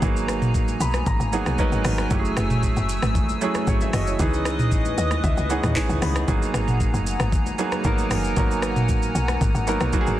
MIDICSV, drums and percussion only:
0, 0, Header, 1, 2, 480
1, 0, Start_track
1, 0, Key_signature, 5, "minor"
1, 0, Tempo, 521739
1, 19, Time_signature, 4, 2, 24, 8
1, 9382, End_track
2, 0, Start_track
2, 0, Title_t, "Drums"
2, 19, Note_on_c, 9, 64, 78
2, 20, Note_on_c, 9, 36, 120
2, 20, Note_on_c, 9, 82, 86
2, 111, Note_off_c, 9, 64, 0
2, 112, Note_off_c, 9, 36, 0
2, 112, Note_off_c, 9, 82, 0
2, 151, Note_on_c, 9, 82, 57
2, 243, Note_off_c, 9, 82, 0
2, 261, Note_on_c, 9, 37, 98
2, 265, Note_on_c, 9, 82, 97
2, 353, Note_off_c, 9, 37, 0
2, 357, Note_off_c, 9, 82, 0
2, 385, Note_on_c, 9, 45, 97
2, 386, Note_on_c, 9, 82, 52
2, 477, Note_off_c, 9, 45, 0
2, 478, Note_off_c, 9, 82, 0
2, 500, Note_on_c, 9, 36, 95
2, 500, Note_on_c, 9, 82, 81
2, 592, Note_off_c, 9, 36, 0
2, 592, Note_off_c, 9, 82, 0
2, 626, Note_on_c, 9, 63, 61
2, 626, Note_on_c, 9, 82, 57
2, 718, Note_off_c, 9, 63, 0
2, 718, Note_off_c, 9, 82, 0
2, 741, Note_on_c, 9, 82, 106
2, 833, Note_off_c, 9, 82, 0
2, 863, Note_on_c, 9, 37, 91
2, 864, Note_on_c, 9, 82, 57
2, 866, Note_on_c, 9, 63, 69
2, 955, Note_off_c, 9, 37, 0
2, 956, Note_off_c, 9, 82, 0
2, 958, Note_off_c, 9, 63, 0
2, 980, Note_on_c, 9, 36, 124
2, 980, Note_on_c, 9, 82, 78
2, 983, Note_on_c, 9, 64, 75
2, 1072, Note_off_c, 9, 36, 0
2, 1072, Note_off_c, 9, 82, 0
2, 1075, Note_off_c, 9, 64, 0
2, 1105, Note_on_c, 9, 63, 76
2, 1107, Note_on_c, 9, 82, 56
2, 1197, Note_off_c, 9, 63, 0
2, 1199, Note_off_c, 9, 82, 0
2, 1221, Note_on_c, 9, 82, 89
2, 1313, Note_off_c, 9, 82, 0
2, 1344, Note_on_c, 9, 63, 70
2, 1344, Note_on_c, 9, 82, 57
2, 1346, Note_on_c, 9, 37, 95
2, 1436, Note_off_c, 9, 63, 0
2, 1436, Note_off_c, 9, 82, 0
2, 1438, Note_off_c, 9, 37, 0
2, 1456, Note_on_c, 9, 82, 81
2, 1460, Note_on_c, 9, 36, 102
2, 1548, Note_off_c, 9, 82, 0
2, 1552, Note_off_c, 9, 36, 0
2, 1582, Note_on_c, 9, 82, 54
2, 1585, Note_on_c, 9, 63, 79
2, 1674, Note_off_c, 9, 82, 0
2, 1677, Note_off_c, 9, 63, 0
2, 1698, Note_on_c, 9, 46, 68
2, 1698, Note_on_c, 9, 82, 83
2, 1699, Note_on_c, 9, 37, 98
2, 1700, Note_on_c, 9, 63, 70
2, 1700, Note_on_c, 9, 64, 72
2, 1790, Note_off_c, 9, 46, 0
2, 1790, Note_off_c, 9, 82, 0
2, 1791, Note_off_c, 9, 37, 0
2, 1792, Note_off_c, 9, 63, 0
2, 1792, Note_off_c, 9, 64, 0
2, 1824, Note_on_c, 9, 37, 104
2, 1825, Note_on_c, 9, 82, 54
2, 1916, Note_off_c, 9, 37, 0
2, 1917, Note_off_c, 9, 82, 0
2, 1939, Note_on_c, 9, 36, 123
2, 1939, Note_on_c, 9, 64, 79
2, 1939, Note_on_c, 9, 82, 88
2, 2031, Note_off_c, 9, 36, 0
2, 2031, Note_off_c, 9, 64, 0
2, 2031, Note_off_c, 9, 82, 0
2, 2069, Note_on_c, 9, 82, 57
2, 2161, Note_off_c, 9, 82, 0
2, 2177, Note_on_c, 9, 37, 96
2, 2181, Note_on_c, 9, 82, 96
2, 2269, Note_off_c, 9, 37, 0
2, 2273, Note_off_c, 9, 82, 0
2, 2303, Note_on_c, 9, 45, 98
2, 2304, Note_on_c, 9, 82, 53
2, 2395, Note_off_c, 9, 45, 0
2, 2396, Note_off_c, 9, 82, 0
2, 2418, Note_on_c, 9, 82, 84
2, 2420, Note_on_c, 9, 36, 92
2, 2510, Note_off_c, 9, 82, 0
2, 2512, Note_off_c, 9, 36, 0
2, 2543, Note_on_c, 9, 82, 57
2, 2544, Note_on_c, 9, 63, 65
2, 2635, Note_off_c, 9, 82, 0
2, 2636, Note_off_c, 9, 63, 0
2, 2661, Note_on_c, 9, 82, 113
2, 2753, Note_off_c, 9, 82, 0
2, 2783, Note_on_c, 9, 37, 91
2, 2783, Note_on_c, 9, 82, 58
2, 2786, Note_on_c, 9, 63, 71
2, 2875, Note_off_c, 9, 37, 0
2, 2875, Note_off_c, 9, 82, 0
2, 2878, Note_off_c, 9, 63, 0
2, 2899, Note_on_c, 9, 36, 126
2, 2899, Note_on_c, 9, 82, 77
2, 2901, Note_on_c, 9, 64, 75
2, 2991, Note_off_c, 9, 36, 0
2, 2991, Note_off_c, 9, 82, 0
2, 2993, Note_off_c, 9, 64, 0
2, 3026, Note_on_c, 9, 63, 77
2, 3026, Note_on_c, 9, 82, 54
2, 3118, Note_off_c, 9, 63, 0
2, 3118, Note_off_c, 9, 82, 0
2, 3140, Note_on_c, 9, 82, 91
2, 3232, Note_off_c, 9, 82, 0
2, 3263, Note_on_c, 9, 82, 60
2, 3265, Note_on_c, 9, 37, 92
2, 3267, Note_on_c, 9, 63, 67
2, 3355, Note_off_c, 9, 82, 0
2, 3357, Note_off_c, 9, 37, 0
2, 3359, Note_off_c, 9, 63, 0
2, 3377, Note_on_c, 9, 82, 78
2, 3380, Note_on_c, 9, 36, 103
2, 3469, Note_off_c, 9, 82, 0
2, 3472, Note_off_c, 9, 36, 0
2, 3502, Note_on_c, 9, 82, 54
2, 3507, Note_on_c, 9, 63, 78
2, 3594, Note_off_c, 9, 82, 0
2, 3599, Note_off_c, 9, 63, 0
2, 3619, Note_on_c, 9, 37, 94
2, 3619, Note_on_c, 9, 46, 71
2, 3619, Note_on_c, 9, 82, 84
2, 3620, Note_on_c, 9, 63, 71
2, 3620, Note_on_c, 9, 64, 74
2, 3711, Note_off_c, 9, 37, 0
2, 3711, Note_off_c, 9, 46, 0
2, 3711, Note_off_c, 9, 82, 0
2, 3712, Note_off_c, 9, 63, 0
2, 3712, Note_off_c, 9, 64, 0
2, 3745, Note_on_c, 9, 82, 53
2, 3837, Note_off_c, 9, 82, 0
2, 3857, Note_on_c, 9, 82, 91
2, 3859, Note_on_c, 9, 36, 126
2, 3860, Note_on_c, 9, 64, 79
2, 3949, Note_off_c, 9, 82, 0
2, 3951, Note_off_c, 9, 36, 0
2, 3952, Note_off_c, 9, 64, 0
2, 3988, Note_on_c, 9, 82, 59
2, 4080, Note_off_c, 9, 82, 0
2, 4097, Note_on_c, 9, 37, 103
2, 4101, Note_on_c, 9, 82, 97
2, 4189, Note_off_c, 9, 37, 0
2, 4193, Note_off_c, 9, 82, 0
2, 4224, Note_on_c, 9, 45, 93
2, 4225, Note_on_c, 9, 82, 53
2, 4316, Note_off_c, 9, 45, 0
2, 4317, Note_off_c, 9, 82, 0
2, 4339, Note_on_c, 9, 82, 87
2, 4340, Note_on_c, 9, 36, 96
2, 4431, Note_off_c, 9, 82, 0
2, 4432, Note_off_c, 9, 36, 0
2, 4464, Note_on_c, 9, 63, 64
2, 4464, Note_on_c, 9, 82, 56
2, 4556, Note_off_c, 9, 63, 0
2, 4556, Note_off_c, 9, 82, 0
2, 4580, Note_on_c, 9, 82, 107
2, 4672, Note_off_c, 9, 82, 0
2, 4700, Note_on_c, 9, 37, 92
2, 4701, Note_on_c, 9, 82, 59
2, 4704, Note_on_c, 9, 63, 70
2, 4792, Note_off_c, 9, 37, 0
2, 4793, Note_off_c, 9, 82, 0
2, 4796, Note_off_c, 9, 63, 0
2, 4819, Note_on_c, 9, 36, 126
2, 4820, Note_on_c, 9, 64, 77
2, 4820, Note_on_c, 9, 82, 75
2, 4911, Note_off_c, 9, 36, 0
2, 4912, Note_off_c, 9, 64, 0
2, 4912, Note_off_c, 9, 82, 0
2, 4944, Note_on_c, 9, 82, 53
2, 4945, Note_on_c, 9, 63, 78
2, 5036, Note_off_c, 9, 82, 0
2, 5037, Note_off_c, 9, 63, 0
2, 5060, Note_on_c, 9, 82, 93
2, 5152, Note_off_c, 9, 82, 0
2, 5183, Note_on_c, 9, 82, 60
2, 5185, Note_on_c, 9, 37, 93
2, 5186, Note_on_c, 9, 45, 74
2, 5186, Note_on_c, 9, 63, 70
2, 5275, Note_off_c, 9, 82, 0
2, 5277, Note_off_c, 9, 37, 0
2, 5278, Note_off_c, 9, 45, 0
2, 5278, Note_off_c, 9, 63, 0
2, 5296, Note_on_c, 9, 82, 82
2, 5297, Note_on_c, 9, 39, 104
2, 5300, Note_on_c, 9, 36, 105
2, 5388, Note_off_c, 9, 82, 0
2, 5389, Note_off_c, 9, 39, 0
2, 5392, Note_off_c, 9, 36, 0
2, 5423, Note_on_c, 9, 82, 57
2, 5425, Note_on_c, 9, 63, 78
2, 5515, Note_off_c, 9, 82, 0
2, 5517, Note_off_c, 9, 63, 0
2, 5539, Note_on_c, 9, 46, 69
2, 5539, Note_on_c, 9, 63, 71
2, 5539, Note_on_c, 9, 64, 70
2, 5539, Note_on_c, 9, 82, 85
2, 5540, Note_on_c, 9, 37, 94
2, 5631, Note_off_c, 9, 46, 0
2, 5631, Note_off_c, 9, 63, 0
2, 5631, Note_off_c, 9, 64, 0
2, 5631, Note_off_c, 9, 82, 0
2, 5632, Note_off_c, 9, 37, 0
2, 5665, Note_on_c, 9, 37, 107
2, 5665, Note_on_c, 9, 82, 55
2, 5757, Note_off_c, 9, 37, 0
2, 5757, Note_off_c, 9, 82, 0
2, 5779, Note_on_c, 9, 36, 119
2, 5779, Note_on_c, 9, 64, 85
2, 5779, Note_on_c, 9, 82, 90
2, 5871, Note_off_c, 9, 36, 0
2, 5871, Note_off_c, 9, 64, 0
2, 5871, Note_off_c, 9, 82, 0
2, 5909, Note_on_c, 9, 82, 57
2, 6001, Note_off_c, 9, 82, 0
2, 6018, Note_on_c, 9, 37, 98
2, 6021, Note_on_c, 9, 82, 96
2, 6110, Note_off_c, 9, 37, 0
2, 6113, Note_off_c, 9, 82, 0
2, 6143, Note_on_c, 9, 45, 95
2, 6144, Note_on_c, 9, 82, 52
2, 6235, Note_off_c, 9, 45, 0
2, 6236, Note_off_c, 9, 82, 0
2, 6258, Note_on_c, 9, 82, 84
2, 6259, Note_on_c, 9, 36, 95
2, 6350, Note_off_c, 9, 82, 0
2, 6351, Note_off_c, 9, 36, 0
2, 6383, Note_on_c, 9, 63, 66
2, 6384, Note_on_c, 9, 82, 57
2, 6475, Note_off_c, 9, 63, 0
2, 6476, Note_off_c, 9, 82, 0
2, 6501, Note_on_c, 9, 82, 109
2, 6593, Note_off_c, 9, 82, 0
2, 6622, Note_on_c, 9, 37, 92
2, 6622, Note_on_c, 9, 82, 57
2, 6623, Note_on_c, 9, 63, 72
2, 6714, Note_off_c, 9, 37, 0
2, 6714, Note_off_c, 9, 82, 0
2, 6715, Note_off_c, 9, 63, 0
2, 6737, Note_on_c, 9, 64, 74
2, 6738, Note_on_c, 9, 36, 127
2, 6740, Note_on_c, 9, 82, 79
2, 6829, Note_off_c, 9, 64, 0
2, 6830, Note_off_c, 9, 36, 0
2, 6832, Note_off_c, 9, 82, 0
2, 6862, Note_on_c, 9, 63, 76
2, 6865, Note_on_c, 9, 82, 57
2, 6954, Note_off_c, 9, 63, 0
2, 6957, Note_off_c, 9, 82, 0
2, 6979, Note_on_c, 9, 82, 93
2, 7071, Note_off_c, 9, 82, 0
2, 7102, Note_on_c, 9, 82, 58
2, 7103, Note_on_c, 9, 63, 70
2, 7104, Note_on_c, 9, 37, 97
2, 7194, Note_off_c, 9, 82, 0
2, 7195, Note_off_c, 9, 63, 0
2, 7196, Note_off_c, 9, 37, 0
2, 7215, Note_on_c, 9, 82, 81
2, 7219, Note_on_c, 9, 36, 99
2, 7307, Note_off_c, 9, 82, 0
2, 7311, Note_off_c, 9, 36, 0
2, 7342, Note_on_c, 9, 82, 58
2, 7345, Note_on_c, 9, 63, 79
2, 7434, Note_off_c, 9, 82, 0
2, 7437, Note_off_c, 9, 63, 0
2, 7459, Note_on_c, 9, 46, 73
2, 7459, Note_on_c, 9, 82, 86
2, 7460, Note_on_c, 9, 37, 95
2, 7460, Note_on_c, 9, 63, 69
2, 7460, Note_on_c, 9, 64, 70
2, 7551, Note_off_c, 9, 46, 0
2, 7551, Note_off_c, 9, 82, 0
2, 7552, Note_off_c, 9, 37, 0
2, 7552, Note_off_c, 9, 63, 0
2, 7552, Note_off_c, 9, 64, 0
2, 7584, Note_on_c, 9, 82, 53
2, 7676, Note_off_c, 9, 82, 0
2, 7696, Note_on_c, 9, 82, 90
2, 7698, Note_on_c, 9, 36, 118
2, 7700, Note_on_c, 9, 64, 84
2, 7788, Note_off_c, 9, 82, 0
2, 7790, Note_off_c, 9, 36, 0
2, 7792, Note_off_c, 9, 64, 0
2, 7828, Note_on_c, 9, 82, 57
2, 7920, Note_off_c, 9, 82, 0
2, 7934, Note_on_c, 9, 37, 99
2, 7937, Note_on_c, 9, 82, 97
2, 8026, Note_off_c, 9, 37, 0
2, 8029, Note_off_c, 9, 82, 0
2, 8062, Note_on_c, 9, 45, 96
2, 8064, Note_on_c, 9, 82, 54
2, 8154, Note_off_c, 9, 45, 0
2, 8156, Note_off_c, 9, 82, 0
2, 8176, Note_on_c, 9, 82, 85
2, 8178, Note_on_c, 9, 36, 99
2, 8268, Note_off_c, 9, 82, 0
2, 8270, Note_off_c, 9, 36, 0
2, 8303, Note_on_c, 9, 82, 56
2, 8304, Note_on_c, 9, 63, 62
2, 8395, Note_off_c, 9, 82, 0
2, 8396, Note_off_c, 9, 63, 0
2, 8421, Note_on_c, 9, 82, 108
2, 8513, Note_off_c, 9, 82, 0
2, 8541, Note_on_c, 9, 37, 95
2, 8541, Note_on_c, 9, 82, 59
2, 8544, Note_on_c, 9, 63, 71
2, 8633, Note_off_c, 9, 37, 0
2, 8633, Note_off_c, 9, 82, 0
2, 8636, Note_off_c, 9, 63, 0
2, 8658, Note_on_c, 9, 36, 122
2, 8658, Note_on_c, 9, 64, 73
2, 8659, Note_on_c, 9, 82, 76
2, 8750, Note_off_c, 9, 36, 0
2, 8750, Note_off_c, 9, 64, 0
2, 8751, Note_off_c, 9, 82, 0
2, 8783, Note_on_c, 9, 63, 79
2, 8786, Note_on_c, 9, 82, 53
2, 8875, Note_off_c, 9, 63, 0
2, 8878, Note_off_c, 9, 82, 0
2, 8898, Note_on_c, 9, 82, 93
2, 8990, Note_off_c, 9, 82, 0
2, 9020, Note_on_c, 9, 82, 60
2, 9022, Note_on_c, 9, 37, 89
2, 9025, Note_on_c, 9, 63, 68
2, 9112, Note_off_c, 9, 82, 0
2, 9114, Note_off_c, 9, 37, 0
2, 9117, Note_off_c, 9, 63, 0
2, 9134, Note_on_c, 9, 82, 82
2, 9138, Note_on_c, 9, 36, 100
2, 9226, Note_off_c, 9, 82, 0
2, 9230, Note_off_c, 9, 36, 0
2, 9260, Note_on_c, 9, 82, 59
2, 9266, Note_on_c, 9, 63, 81
2, 9352, Note_off_c, 9, 82, 0
2, 9358, Note_off_c, 9, 63, 0
2, 9382, End_track
0, 0, End_of_file